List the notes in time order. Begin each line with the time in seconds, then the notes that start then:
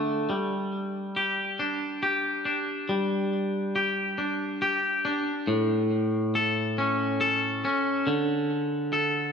Already playing: D3 A3 D4
0.30 G3
1.16 G4
1.59 D4
2.03 G4
2.45 D4
2.89 G3
3.76 G4
4.18 D4
4.62 G4
5.05 D4
5.47 A2
6.35 A4
6.78 C#4
7.21 A4
7.65 C#4
8.07 D3
8.93 A4